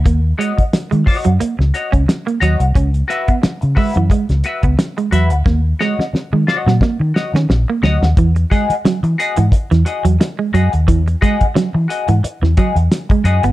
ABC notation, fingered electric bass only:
X:1
M:4/4
L:1/16
Q:"Swing 16ths" 1/4=89
K:Elyd
V:1 name="Fingered electric bass" clef=bass
D,,2 z3 D, z F,, z C,, z C,, z2 D,, ^B,,, | C,,2 z3 C, z F,, z C,, z C,, z2 E,, =D,, | D,,2 z3 D, z A,, z D, z D, A,,, z =D,, ^D,, | E,,2 z3 E, z G,, z E,, z E,, z2 F,, D,, |
E,,2 z3 E, z G,, z E,, z E,, z2 F,, =G,,, |]